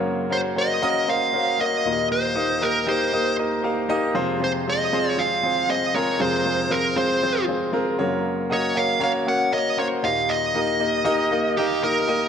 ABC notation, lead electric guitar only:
X:1
M:4/4
L:1/8
Q:"Swing 16ths" 1/4=117
K:Ebmix
V:1 name="Lead electric guitar"
z c e2 f2 e2 | c2 B c2 z3 | z c e2 f2 e d | c2 B c2 z3 |
z d f f _g e d f | e4- e G B2 |]